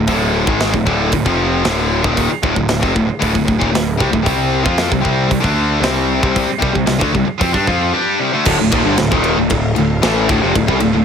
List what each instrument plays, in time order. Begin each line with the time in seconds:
0.07 picked electric bass D1, distorted electric guitar D2 A2 D3, kick, open hi-hat
0.47 picked electric bass G#1, distorted electric guitar G#2 D#3 G#3, kick
0.60 snare, open hi-hat
0.73 picked electric bass D1, distorted electric guitar D2 A2, kick
0.86 picked electric bass D1, distorted electric guitar D2 A2 D3, kick
1.12 picked electric bass D1, distorted electric guitar D2 A2, kick, open hi-hat
1.26 picked electric bass F1, distorted electric guitar F2 C3 F3, kick
1.64 picked electric bass D1, distorted electric guitar D2 A2 D3, snare, open hi-hat
2.04 picked electric bass D#1, distorted electric guitar D#2 A#2 D#3, kick
2.17 kick, open hi-hat
2.29 muted distorted electric guitar stroke, muted picked electric bass stroke
2.43 picked electric bass D1, distorted electric guitar D2 A2, kick
2.55 picked electric bass D1, distorted electric guitar D2 A2, kick
2.69 picked electric bass D1, distorted electric guitar D2 A2, snare, open hi-hat
2.80 picked electric bass F1, distorted electric guitar F2 C3, kick
2.94 picked electric bass D1, distorted electric guitar D2 A2, kick
3.07 muted distorted electric guitar stroke
3.11 muted picked electric bass stroke
3.19 picked electric bass D1, distorted electric guitar D2 A2, kick, open hi-hat
3.33 picked electric bass D1, distorted electric guitar D2 A2, kick
3.45 picked electric bass D1, distorted electric guitar D2 A2, kick
3.59 picked electric bass D#1, distorted electric guitar D#2 A#2, kick
3.71 distorted electric guitar D2 A2
3.75 picked electric bass D1, snare, open hi-hat
3.97 picked electric bass C2, distorted electric guitar C3 G3, kick
4.11 picked electric bass D1, distorted electric guitar D2 A2, kick
4.23 picked electric bass C2, distorted electric guitar C3 G3 C4, kick, open hi-hat
4.63 picked electric bass F2, distorted electric guitar F3 C4 F4, kick
4.78 snare, open hi-hat
4.88 distorted electric guitar C3 G3, kick
4.92 picked electric bass C2
5.01 distorted electric guitar C3 G3 C4
5.05 picked electric bass C2, kick
5.27 distorted electric guitar C3 G3, kick, open hi-hat
5.32 picked electric bass C2
5.40 distorted electric guitar D3 A3 D4, kick
5.45 picked electric bass D2
5.80 picked electric bass C2, distorted electric guitar C3 G3 C4, snare, open hi-hat
6.20 picked electric bass C2, distorted electric guitar C3 G3 C4, kick
6.36 kick, open hi-hat
6.46 muted distorted electric guitar stroke, muted picked electric bass stroke
6.59 picked electric bass C2, distorted electric guitar C3 G3, kick
6.73 picked electric bass C2, distorted electric guitar C3 G3, kick
6.86 picked electric bass C2, distorted electric guitar C3 G3, snare, open hi-hat
6.99 picked electric bass D2, distorted electric guitar D3 A3, kick
7.13 picked electric bass C2, distorted electric guitar C3 G3, kick
7.26 muted picked electric bass stroke, muted distorted electric guitar stroke
7.40 picked electric bass F2, distorted electric guitar F3 C4, kick, open hi-hat
7.53 picked electric bass G2, distorted electric guitar G3 D4, kick
7.67 picked electric bass F2, distorted electric guitar F3 C4 F4, kick
7.93 distorted electric guitar G3 D4 G4
8.19 distorted electric guitar C3 G3
8.33 distorted electric guitar D3 A3
8.43 picked electric bass D1, distorted electric guitar D2 A2, string section D3 A3 A4 F5, kick, crash
8.59 picked electric bass D1, distorted electric guitar D2 A2
8.71 picked electric bass D#1, distorted electric guitar D#2 A#2, kick, ride
8.84 picked electric bass G1, distorted electric guitar G2 D3
8.97 picked electric bass D1, distorted electric guitar D2 A2, snare, ride
9.11 picked electric bass D#1, distorted electric guitar D#2 A#2 D#3, kick
9.24 ride
9.37 picked electric bass D1, distorted electric guitar D2 A2
9.50 picked electric bass D1, distorted electric guitar D2 A2, kick, ride
9.75 picked electric bass D1, distorted electric guitar D2 A2, ride
10.02 picked electric bass A1, distorted electric guitar A2 E3 A3, snare, ride
10.28 picked electric bass D1, distorted electric guitar D2 A2, kick, ride
10.41 picked electric bass F1, distorted electric guitar F2 C3
10.55 picked electric bass D1, distorted electric guitar D2 A2, kick, ride
10.67 picked electric bass C2, distorted electric guitar C3 G3, kick
10.80 picked electric bass D1, distorted electric guitar D2 A2, ride
10.94 picked electric bass D1, distorted electric guitar D2 A2